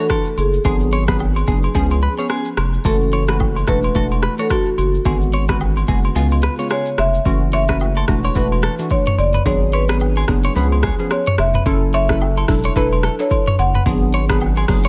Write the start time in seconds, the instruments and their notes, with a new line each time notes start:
0.00 synth pluck E3 A3 D4 F#4, marimba A4
0.09 clean electric guitar A4, kick, cross-stick, high agogo, shaker
0.25 shaker
0.37 sub bass F#1, marimba G#4, high agogo, shaker
0.54 shaker
0.65 sub bass G#1, synth pluck F#3 B3 D4 G#4, clean electric guitar G#4, kick, high agogo, shaker
0.80 shaker
0.92 clean electric guitar C#5, high agogo, shaker
1.08 synth pluck F#3 B3 D4 G#4, clean electric guitar B4, kick, cross-stick, shaker
1.19 low woodblock, shaker
1.36 high agogo, shaker
1.47 sub bass F#1, synth pluck F#3 B3 D4 G#4, clean electric guitar G#4, kick, shaker
1.63 high agogo, shaker
1.74 sub bass C#2, synth pluck F3 B3 C#4 G#4, clean electric guitar G#4, kick, shaker
1.91 high agogo, shaker
2.03 clean electric guitar B4
2.18 synth pluck F3 B3 C#4 G#4, clean electric guitar C#5, shaker
2.29 clean electric guitar G#4, cross-stick, high agogo, shaker
2.45 shaker
2.57 sub bass F1, cross-stick, high agogo, shaker
2.74 shaker
2.85 sub bass F#1, synth pluck E3 A3 C#4 F#4, clean electric guitar A4, marimba A4, kick, high agogo, shaker
3.01 shaker
3.12 clean electric guitar C#5, high agogo, shaker
3.28 synth pluck E3 A3 C#4 F#4, clean electric guitar B4, cross-stick, shaker
3.39 kick, low woodblock, shaker
3.56 high agogo, shaker
3.67 sub bass E1, synth pluck E3 A3 D4 F#4, clean electric guitar A4, marimba B4, kick, cross-stick, shaker
3.83 high agogo, shaker
3.95 sub bass E1, synth pluck E3 A3 D4 F#4, clean electric guitar A4, kick, shaker
4.11 high agogo, shaker
4.23 clean electric guitar B4, cross-stick
4.39 synth pluck E3 A3 D4 F#4, marimba A4, clean electric guitar C#5, shaker
4.50 marimba F#4, clean electric guitar A4, kick, cross-stick, high agogo, shaker
4.66 shaker
4.78 sub bass F#1, marimba F#4, high agogo, shaker
4.94 shaker
5.05 sub bass G#1, synth pluck D3 G#3 B3 F#4, clean electric guitar G#4, kick, high agogo, shaker
5.21 shaker
5.33 clean electric guitar C#5, high agogo, shaker
5.48 synth pluck D3 G#3 B3 F#4, clean electric guitar B4, kick, cross-stick, shaker
5.60 low woodblock, shaker
5.77 high agogo, shaker
5.88 sub bass F#1, synth pluck D3 G#3 B3 F#4, clean electric guitar G#4, kick, shaker
6.03 high agogo, shaker
6.15 sub bass C#2, synth pluck C#3 G#3 B3 F4, clean electric guitar G#4, shaker
6.31 high agogo, shaker
6.43 clean electric guitar B4, cross-stick, shaker
6.59 synth pluck C#3 G#3 B3 F4, clean electric guitar C#5, shaker
6.70 clean electric guitar G#4, marimba C#5, cross-stick, high agogo, shaker
6.86 shaker
6.98 sub bass F1, marimba E5, cross-stick, high agogo, shaker
7.14 shaker
7.25 sub bass F#1, synth pluck E3 A3 C#4 F#4, kick, high agogo, shaker
7.53 clean electric guitar C#5, marimba E5, high agogo, shaker
7.68 synth pluck E3 A3 C#4 F#4, clean electric guitar B4, kick, cross-stick, shaker
7.80 low woodblock, shaker
7.97 clean electric guitar A4, high agogo
8.08 sub bass E1, synth pluck E3 A3 D4 F#4, kick, cross-stick, shaker
8.23 clean electric guitar C#5, high agogo, shaker
8.35 sub bass E1, synth pluck E3 A3 D4 F#4, clean electric guitar B4, marimba B4, kick, shaker
8.52 high agogo
8.63 clean electric guitar A4, cross-stick, shaker
8.79 synth pluck E3 A3 D4 F#4, shaker
8.90 marimba C#5, kick, high agogo, shaker
9.07 clean electric guitar C#5, mid tom
9.18 sub bass F#1, marimba D5, high agogo, shaker
9.34 clean electric guitar B4, mid tom, shaker
9.46 sub bass G#1, synth pluck F#3 B3 D4 G#4, marimba C#5, kick, high agogo, shaker
9.73 marimba B4, clean electric guitar C#5, high agogo, shaker
9.89 synth pluck F#3 B3 D4 G#4, clean electric guitar B4, cross-stick, shaker
10.00 low woodblock, shaker
10.17 clean electric guitar G#4, high agogo
10.28 sub bass F#1, synth pluck F#3 B3 D4 G#4, kick, cross-stick, shaker
10.43 clean electric guitar C#5, high agogo, shaker
10.55 sub bass C#2, synth pluck F3 B3 C#4 G#4, clean electric guitar B4, shaker
10.72 high agogo
10.83 clean electric guitar G#4, kick, cross-stick, shaker
10.99 synth pluck F3 B3 C#4 G#4, shaker
11.10 marimba C#5, cross-stick, high agogo, shaker
11.27 clean electric guitar C#5, mid tom
11.38 sub bass F1, marimba E5, cross-stick, high agogo, shaker
11.54 clean electric guitar B4, mid tom, shaker
11.66 sub bass F#1, synth pluck F#3 C#4 E4 A4, kick, high agogo, shaker
11.93 clean electric guitar C#5, marimba E5, high agogo, shaker
12.09 synth pluck F#3 C#4 E4 A4, clean electric guitar B4, kick, cross-stick, shaker
12.20 low woodblock, shaker
12.37 clean electric guitar A4, high agogo
12.48 sub bass E1, synth pluck F#3 D4 E4 A4, kick, cross-stick, open hi-hat, shaker
12.64 clean electric guitar C#5, high agogo, shaker
12.75 sub bass E1, synth pluck F#3 D4 E4 A4, marimba B4, clean electric guitar B4, kick, shaker
12.93 high agogo
13.03 clean electric guitar A4, cross-stick, shaker
13.19 synth pluck F#3 D4 E4 A4, marimba C#5, shaker
13.30 kick, high agogo, shaker
13.47 clean electric guitar C#5, mid tom
13.58 sub bass F#1, marimba F#5, high agogo, shaker
13.75 clean electric guitar B4, mid tom, shaker
13.86 sub bass G#1, synth pluck F#3 B3 D4 G#4, kick, high agogo, shaker
14.13 clean electric guitar C#5, high agogo, shaker
14.29 synth pluck F#3 B3 D4 G#4, clean electric guitar B4, kick, cross-stick, shaker
14.40 low woodblock, shaker
14.57 clean electric guitar G#4, high agogo
14.68 sub bass F#1, synth pluck F#3 B3 D4 G#4, kick, cross-stick, open hi-hat, shaker
14.84 clean electric guitar C#5, high agogo, shaker